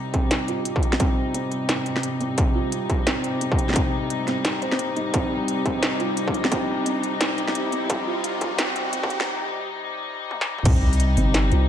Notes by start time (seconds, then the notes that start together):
Already playing: C2 C3 G3 C4 D#4, riser
0.14 C4, kick, closed hi-hat
0.31 snare, closed hi-hat
0.48 C2 F4, closed hi-hat
0.65 closed hi-hat
0.76 kick
0.83 C2, closed hi-hat
0.93 snare
1.00 C4, kick, closed hi-hat
1.34 C4, closed hi-hat
1.52 G1, closed hi-hat
1.69 C4, snare, closed hi-hat
1.86 closed hi-hat
1.96 snare
2.03 closed hi-hat
2.20 C4, closed hi-hat
2.38 kick, closed hi-hat
2.55 F4
2.72 closed hi-hat
2.90 kick, closed hi-hat
3.07 C4, snare, closed hi-hat
3.24 C2, closed hi-hat
3.41 C4, closed hi-hat
3.52 kick
3.59 closed hi-hat
3.69 snare
3.73 C4, kick, snare, closed hi-hat
4.10 closed hi-hat
4.28 G1 C4, snare, closed hi-hat
4.45 snare, closed hi-hat
4.62 C5, closed hi-hat
4.72 snare
4.79 A#1, closed hi-hat
4.96 D#4, closed hi-hat
5.14 C4, kick, closed hi-hat
5.48 closed hi-hat
5.65 C4, kick, closed hi-hat
5.83 snare, closed hi-hat
6.00 C2 F4, closed hi-hat
6.17 closed hi-hat
6.28 kick
6.34 C2, closed hi-hat
6.45 snare
6.51 C4, kick, closed hi-hat
6.86 C4, closed hi-hat
7.03 G1, closed hi-hat
7.21 C4, snare, closed hi-hat
7.38 closed hi-hat
7.48 snare
7.55 closed hi-hat
7.72 C4, closed hi-hat
7.90 kick, closed hi-hat
8.07 F4
8.24 closed hi-hat
8.41 kick, closed hi-hat
8.58 C4, snare, closed hi-hat
8.76 closed hi-hat
8.93 C4, closed hi-hat
9.03 kick
9.10 closed hi-hat
9.21 snare
10.31 high tom
10.41 snare
10.58 mid tom
10.65 C2 C4, kick, closed hi-hat, crash, sub drop
10.93 open hi-hat
11.00 closed hi-hat
11.17 G1 C4, open hi-hat
11.34 snare, closed hi-hat
11.52 C2 F4, closed hi-hat